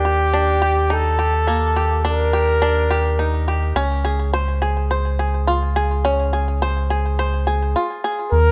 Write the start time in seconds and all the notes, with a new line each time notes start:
Already playing: D#2 A#3 D4 G4
0.05 G4
0.34 D4
0.62 G4
0.90 D#4 A4
1.19 G4
1.47 A#3
1.76 G4
2.05 D4 A#4
2.33 G4
2.62 D4
2.90 G4
3.19 D#4
3.48 G4
3.76 C#2 C#4
4.05 G#4
4.34 C5
4.62 G#4
4.91 C5
5.19 G#4
5.47 F4
5.76 G#4
6.05 C#4
6.33 G#4
6.62 C5
6.90 G#4
7.19 C5
7.47 G#4
7.76 F4
8.04 G#4
8.31 D#2 A#4